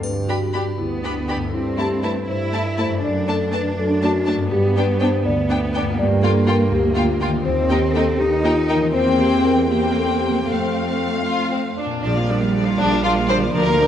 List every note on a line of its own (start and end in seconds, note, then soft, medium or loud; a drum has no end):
0.00 1.34 G2 soft
0.00 0.66 G2 soft
0.00 1.48 B3 soft
0.00 1.51 D4 soft
0.00 3.02 G4 soft
0.00 0.26 B4 medium
0.00 triangle soft
0.27 0.36 D4 soft
0.27 0.51 F#4 soft
0.27 0.37 G4 soft
0.27 0.37 B5 soft
0.53 0.62 D4 soft
0.53 0.77 G4 soft
0.53 0.62 G4 soft
0.53 0.61 B5 soft
0.78 1.41 D2 soft
0.78 1.49 B3 soft
0.78 1.02 E4 medium
1.03 1.50 D4 soft
1.03 1.12 D4 soft
1.03 1.12 G4 soft
1.03 1.12 B5 soft
1.28 1.37 D4 soft
1.28 1.37 G4 soft
1.28 1.36 B5 soft
1.35 2.95 G2 soft
1.39 2.88 A3 soft
1.44 3.00 E4 soft
1.48 2.97 A4 soft
1.53 2.15 G2 soft
1.53 2.26 C4 soft
1.53 1.76 E4 medium
1.78 1.86 A3 soft
1.78 1.86 E4 soft
1.78 2.01 G4 medium
1.78 1.87 A5 soft
2.03 2.11 A3 soft
2.03 2.11 E4 soft
2.03 2.26 B4 medium
2.03 2.11 A5 soft
2.28 2.90 G2 soft
2.28 3.01 E4 medium
2.28 2.75 C5 medium
2.52 2.60 A3 soft
2.52 2.61 E4 soft
2.52 2.60 A5 soft
2.78 2.86 A3 soft
2.78 2.86 E4 soft
2.78 3.02 C5 medium
2.78 2.86 A5 soft
2.85 4.44 F#2 soft
2.89 4.46 A3 soft
2.93 4.41 D4 soft
2.98 4.51 A4 soft
3.02 3.65 F#2 medium
3.02 4.48 D4 medium
3.02 3.26 D5 medium
3.27 3.36 A3 soft
3.27 3.35 D4 soft
3.27 3.51 A4 medium
3.27 3.36 A5 soft
3.52 3.60 A3 soft
3.52 3.60 D4 soft
3.52 3.76 B4 medium
3.52 3.60 A5 soft
3.77 4.39 F#2 medium
3.77 4.01 A4 medium
4.02 4.10 A3 soft
4.02 4.11 D4 soft
4.02 4.49 F#4 medium
4.02 4.10 A5 soft
4.27 4.35 A3 soft
4.27 4.35 D4 soft
4.27 4.35 A5 soft
4.34 5.79 G2 soft
4.38 5.93 B3 soft
4.42 7.43 D4 soft
4.47 5.93 G4 soft
4.51 5.12 G2 medium
4.51 5.23 B3 medium
4.51 4.74 G4 medium
4.76 4.84 B3 soft
4.76 4.85 D4 soft
4.76 4.98 B4 medium
4.76 4.84 G5 soft
4.99 5.09 B3 soft
4.99 5.09 D4 soft
4.99 5.22 C5 medium
4.99 5.08 G5 soft
5.24 5.86 D2 medium
5.24 5.97 B3 medium
5.24 5.71 D5 medium
5.50 5.58 B3 soft
5.50 5.58 D4 soft
5.50 5.58 G5 medium
5.73 5.81 B3 soft
5.73 5.83 D4 soft
5.73 5.82 G5 medium
5.80 7.38 G2 medium
5.85 7.30 A#3 soft
5.89 7.43 F4 soft
5.94 6.59 G2 medium
5.94 7.39 G4 soft
5.98 7.45 A#3 medium
5.98 6.21 D5 medium
6.22 6.30 A#3 medium
6.22 6.31 F4 medium
6.22 6.46 A4 medium
6.22 6.30 G5 medium
6.46 6.54 A#3 medium
6.46 6.55 F4 soft
6.46 6.71 A#4 medium
6.46 6.55 G5 medium
6.71 7.33 D2 medium
6.71 6.95 G4 medium
6.95 7.03 A#3 medium
6.95 7.04 F4 medium
6.95 7.42 F4 medium
6.95 7.03 G5 medium
7.20 7.28 A#3 soft
7.20 7.29 F4 soft
7.20 7.28 G5 soft
7.27 8.87 D#3 soft
7.31 8.78 A#3 soft
7.36 8.91 D#4 soft
7.40 8.87 G4 soft
7.45 8.07 D#2 medium
7.45 8.17 C4 medium
7.45 7.68 C5 medium
7.69 7.77 A#3 medium
7.69 7.78 D#4 soft
7.69 7.93 G4 medium
7.69 7.77 G5 medium
7.93 8.02 A#3 soft
7.93 8.03 D#4 medium
7.93 8.17 A4 medium
7.93 8.03 G5 soft
8.18 8.81 D#2 medium
8.18 8.93 D#4 medium
8.18 8.42 G4 medium
8.43 8.51 A#3 soft
8.43 8.52 D#4 medium
8.43 8.67 F4 medium
8.43 8.52 G5 medium
8.68 8.77 A#3 soft
8.68 8.77 D#4 soft
8.68 8.92 A#4 medium
8.68 8.77 G5 soft
8.75 10.40 E3 soft
8.79 10.42 A#3 soft
8.84 10.37 C4 soft
8.89 10.47 G4 soft
8.93 10.43 E2 medium
8.93 9.66 A#3 medium
8.93 9.68 C4 medium
8.93 9.66 C4 medium
8.93 9.17 C5 medium
8.93 9.66 G5 medium
9.19 9.42 G4 medium
9.44 9.68 A#4 medium
9.69 10.45 A#3 soft
9.69 10.46 A#3 soft
9.69 10.45 C4 soft
9.69 9.94 G4 medium
9.69 10.46 G5 soft
9.95 10.19 A4 medium
10.20 10.45 G4 medium
10.29 13.87 F3 soft
10.34 11.99 A3 soft
10.39 12.02 C4 soft
10.43 11.65 A3 soft
10.43 11.19 C4 soft
10.43 12.04 A4 soft
10.43 11.21 A4 medium
10.43 11.83 F5 soft
10.47 11.81 F2 soft
10.47 11.84 A3 soft
11.26 11.50 F4 soft
11.51 11.59 C4 soft
11.77 12.03 D4 soft
11.85 13.46 A#2 soft
11.90 13.39 A#3 soft
11.95 13.43 D4 soft
11.99 13.48 F4 soft
12.03 12.70 A#1 medium
12.03 12.16 F3 soft
12.03 13.49 G3 medium
12.03 12.16 D4 soft
12.03 12.16 D5 soft
12.16 12.30 A#3 soft
12.16 12.30 F4 soft
12.16 12.29 F5 soft
12.29 12.42 F3 soft
12.29 12.42 D4 soft
12.29 12.41 D5 soft
12.41 12.54 A#3 soft
12.41 12.54 F4 soft
12.41 12.54 F5 soft
12.55 12.66 F3 soft
12.55 12.66 D4 soft
12.55 12.66 D5 soft
12.66 12.79 A#3 soft
12.66 12.79 F4 soft
12.66 12.79 F5 soft
12.78 13.44 A#1 medium
12.78 12.91 F3 soft
12.78 13.02 D4 medium
12.78 12.91 D4 soft
12.78 12.91 D5 soft
12.91 13.04 A#3 soft
12.91 13.04 F4 soft
12.91 13.04 F5 soft
13.03 13.15 F3 soft
13.03 13.16 D4 soft
13.03 13.11 F4 medium
13.03 13.16 D5 soft
13.16 13.29 A#3 soft
13.16 13.29 F4 soft
13.16 13.29 F5 soft
13.29 13.41 F3 soft
13.29 13.41 D4 soft
13.29 13.37 C5 medium
13.29 13.41 D5 soft
13.36 13.87 D3 soft
13.40 13.87 A#3 soft
13.40 13.54 A#3 soft
13.40 13.54 F4 soft
13.40 13.53 F5 soft
13.44 13.87 D4 soft
13.49 13.87 D2 medium
13.49 13.87 F4 soft
13.49 13.87 A#4 medium
13.53 13.87 D2 medium
13.53 13.87 F3 medium
13.53 13.65 F3 soft
13.53 13.65 D4 soft
13.53 13.65 D5 soft
13.67 13.79 A#3 soft
13.67 13.79 F4 soft
13.67 13.79 F5 soft
13.80 13.87 F3 soft
13.80 13.87 D4 soft
13.80 13.87 D5 soft